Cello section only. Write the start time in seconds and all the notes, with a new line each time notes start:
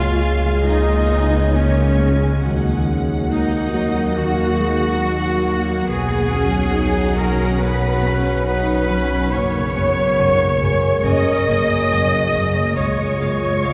Already playing: F4
0.69 D#4
1.57 C#4
3.30 D#4
4.17 F#4
5.90 G#4
7.19 A#4
7.60 B4
8.46 B4
9.32 C#5
11.06 D#5
12.77 C#5